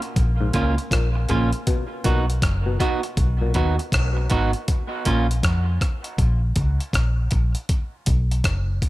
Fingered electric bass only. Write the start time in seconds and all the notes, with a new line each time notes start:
0.17 A#1
0.54 C#2
0.91 A#1
1.30 A#1
2.05 B1
2.43 F#1
3.17 B1
3.55 D#2
3.92 B1
4.31 G#1
5.06 A#1
5.44 F2
6.19 A#1
6.56 C#2
6.93 A#1
7.32 A#1
8.07 B1
8.44 F#1